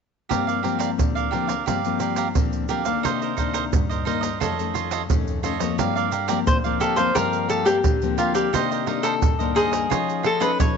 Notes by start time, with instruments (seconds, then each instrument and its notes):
0.29 nylon-string guitar G2 F3 A#3 C4, cavaquinho G4 A#4 D5 F5, pandeiro, shaker, surdo
0.47 cavaquinho A#4 D5 F5, pandeiro, shaker
0.63 nylon-string guitar F3 A#3 C4, cavaquinho G4 A#4 D5 F5, pandeiro
0.79 cavaquinho G4 A#4 D5 F5, pandeiro, shaker
0.98 nylon-string guitar D3, pandeiro, shaker, surdo
1.15 cavaquinho A#4 D5 F5, pandeiro, shaker
1.31 nylon-string guitar F3 A#3 C4, cavaquinho G4 A#4 D5 F5, pandeiro
1.47 cavaquinho A#4 D5 F5, pandeiro, shaker
1.66 nylon-string guitar G2 F3 A#3 C4, cavaquinho G4 A#4 D5 F5, pandeiro, shaker, surdo
1.85 nylon-string guitar F3 A#3 C4, pandeiro, shaker
2.00 cavaquinho G4 A#4 D5 F5, pandeiro, shaker
2.16 cavaquinho G4 A#4 D5 F5, pandeiro, shaker
2.35 nylon-string guitar D3 F3 A#3 C4, pandeiro, shaker, surdo
2.53 pandeiro, shaker
2.69 nylon-string guitar F3 A#3 C4, cavaquinho G4 A#4 D5 F5, pandeiro, shaker
2.85 nylon-string guitar D#3 A#3 D4, cavaquinho A#4 D5 F5, pandeiro, shaker
3.03 nylon-string guitar C3, cavaquinho D#4 A#4 C5 D#5, pandeiro, shaker, surdo
3.21 cavaquinho A#4 C5 D#5, pandeiro, shaker
3.37 nylon-string guitar D#3 A#3 D4, cavaquinho D#4 A#4 C5 D#5, pandeiro, shaker, surdo
3.53 cavaquinho D#4 A#4 C5 D#5, pandeiro, shaker
3.73 nylon-string guitar G2, pandeiro, shaker, surdo
3.90 cavaquinho A#4 C5 D#5, pandeiro, shaker
4.05 nylon-string guitar D#3 A#3 D4, cavaquinho D#4 A#4 C5 D#5, pandeiro
4.21 cavaquinho A#4 C5 D#5, pandeiro, shaker
4.40 nylon-string guitar F2 D#3 A3 C#4, cavaquinho F4 A4 C#5 D#5, pandeiro, shaker, surdo
4.59 nylon-string guitar D#3 A3 C#4, pandeiro, shaker
4.74 cavaquinho F4 A4 C#5 D#5, pandeiro, shaker
4.91 cavaquinho F4 A4 C#5 D#5, pandeiro, shaker
5.10 nylon-string guitar F2 D#3 A3 C#4, pandeiro, shaker, surdo
5.28 pandeiro, shaker
5.43 nylon-string guitar D#3 A3 C#4, cavaquinho F4 A4 C#5 D#5, pandeiro, shaker
5.59 nylon-string guitar F3 A#3 C4, cavaquinho A4 C#5 D#5, pandeiro, shaker
5.78 nylon-string guitar G2, cavaquinho G4 A#4 D5 F5, pandeiro, shaker, surdo
5.95 cavaquinho A#4 D5 F5, pandeiro, shaker
6.11 cavaquinho G4 A#4 D5 F5, pandeiro, shaker
6.28 nylon-string guitar F3 A#3 C4, cavaquinho G4 A#4 D5 F5, pandeiro, shaker
6.47 nylon-string guitar D3, cavaquinho C5, pandeiro, shaker, surdo
6.64 nylon-string guitar F3 A#3 C4, cavaquinho A#4 D5 F5, pandeiro, shaker
6.80 cavaquinho G4 A4 A#4 D5 F5, pandeiro, shaker
6.96 nylon-string guitar F3 A#3 C4, cavaquinho A#4 C5 D5 F5, pandeiro, shaker
7.15 nylon-string guitar G2 F3 A#3 C4, cavaquinho G4 A#4 D5 F5, pandeiro, shaker, surdo
7.33 pandeiro, shaker
7.49 cavaquinho G4 A4 A#4 D5 F5, pandeiro, shaker
7.65 nylon-string guitar F3 A#3 C4, cavaquinho G4 A#4 D5 F5, pandeiro, shaker
7.84 nylon-string guitar D3, pandeiro, shaker, surdo
8.02 nylon-string guitar F3 A#3 C4, pandeiro, shaker
8.18 cavaquinho F4 G4 A#4 D5 F5, pandeiro, shaker
8.34 cavaquinho G4 A#4 D5 F5, pandeiro, shaker
8.53 nylon-string guitar C3 D#3 A#3 D4, cavaquinho D#4 A#4 C5 D#5, pandeiro, shaker, surdo
8.71 cavaquinho A#4 C5 D#5, pandeiro, shaker
8.86 nylon-string guitar D#3 A#3 D4, cavaquinho D#4 A#4 C5 D#5, pandeiro
9.03 cavaquinho D#4 A4 A#4 C5 D#5, pandeiro, shaker
9.22 nylon-string guitar G2, pandeiro, shaker, surdo
9.39 nylon-string guitar D#3 A#3 D4, cavaquinho A#4 C5 D#5, pandeiro, shaker
9.55 cavaquinho D#4 G#4 A#4 C5 D#5, pandeiro, shaker
9.71 cavaquinho A#4 C5 D#5, pandeiro, shaker
9.90 nylon-string guitar F3 C#4 D#4, cavaquinho F4 C#5 D#5, pandeiro, shaker, surdo
10.09 pandeiro, shaker
10.23 cavaquinho F4 A4 C#5 D#5, pandeiro
10.40 nylon-string guitar C#4 D#4 A4, cavaquinho F4 A4 B4 C#5 D#5, pandeiro, shaker
10.59 nylon-string guitar F3, cavaquinho C#5, pandeiro, shaker, surdo